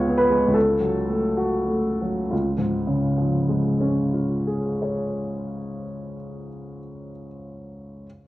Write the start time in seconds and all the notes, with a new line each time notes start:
Already playing: C#2 G#3 B3 F4 C#5
0.08 B3
0.17 B4
0.30 G#3
0.47 C#2
0.53 A4
0.80 F#3
1.08 A3
1.37 F#4
1.68 A3
2.02 F#3
2.30 C#2 F4
2.58 G#2
2.87 C#3
3.17 F3
3.49 G#3
3.81 C#4
4.14 F4
4.47 G#4
4.82 C#5